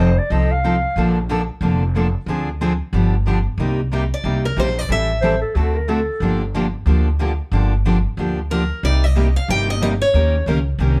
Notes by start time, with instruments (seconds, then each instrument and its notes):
Already playing: upright bass F1, steel-string acoustic guitar D#5
0.00 clarinet C5
0.18 clarinet D5
0.30 upright bass C2, steel-string acoustic guitar F3 C4 D#4 A4, clarinet D#5
0.51 clarinet F5
0.64 steel-string acoustic guitar F3 C4 D#4 A4
0.96 upright bass A#1, steel-string acoustic guitar D3 F3 A#3 D4 A4
1.29 steel-string acoustic guitar D3 F3 A#3 D4 A4
1.61 upright bass F1, steel-string acoustic guitar D3 F3 A#3 D4 A4
1.96 steel-string acoustic guitar D3 F3 A#3 D4 A4
2.26 upright bass D2, steel-string acoustic guitar D3 F3 C4 D4 G#4
2.61 steel-string acoustic guitar D3 F3 C4 D4 G#4
2.93 upright bass G1, steel-string acoustic guitar D3 F3 B3 D4 G4
3.27 steel-string acoustic guitar D3 F3 B3 D4 G4
3.58 upright bass C2, steel-string acoustic guitar C3 G3 A#3 D#4 G4
3.92 steel-string acoustic guitar C3 G3 A#3 D#4 G4
4.14 steel-string acoustic guitar D5
4.24 upright bass C2, steel-string acoustic guitar C3 G3 A#3 D#4 G4
4.45 steel-string acoustic guitar A#4
4.56 upright bass A#1, steel-string acoustic guitar C3 G3 A#3 D#4 G4 C5
4.79 steel-string acoustic guitar D5
4.89 upright bass A1, steel-string acoustic guitar E3 G3 C4 E4 A4 E5
5.22 steel-string acoustic guitar E3 G3 C4 E4 A4, clarinet C5
5.41 clarinet A4
5.55 upright bass D2, steel-string acoustic guitar D3 A3 C4 F#4 A4, clarinet F#4
5.75 clarinet A#4
5.88 steel-string acoustic guitar D3 A3 C4 F#4 A4, clarinet A4
6.20 upright bass G1, steel-string acoustic guitar D3 F3 A#3 D4 G4
6.55 steel-string acoustic guitar D3 F3 A#3 D4 G4
6.86 upright bass D2, steel-string acoustic guitar D3 F3 A#3 D4 G4
7.19 steel-string acoustic guitar D3 F3 A#3 D4 G4
7.52 upright bass G1, steel-string acoustic guitar D3 F3 A#3 D4 G4
7.85 steel-string acoustic guitar D3 F3 A#3 D4 G4
8.17 upright bass D2, steel-string acoustic guitar D3 F3 A#3 D4 G4
8.51 steel-string acoustic guitar D3 F3 A#3 D4 G4 A#4
8.83 upright bass C2, steel-string acoustic guitar C3 G3 A#3 D#4 G4 D5
9.04 steel-string acoustic guitar D#5
9.15 steel-string acoustic guitar C3 G3 A#3 D#4 G4
9.36 steel-string acoustic guitar F5
9.48 upright bass G1, steel-string acoustic guitar C3 G3 A#3 D#4 G4 G5
9.69 steel-string acoustic guitar A#3 D#4 G4 D#5
9.82 steel-string acoustic guitar C3 G3 A#3 D#4 G4 D#5
10.02 steel-string acoustic guitar C#5
10.14 upright bass D#2, steel-string acoustic guitar D#3 A#3 C#4 G4 A#4
10.46 upright bass C#2, steel-string acoustic guitar D#3 A#3 C#4 G4 A#4
10.79 upright bass C2, steel-string acoustic guitar D#3 A#3 C#4 G4 A#4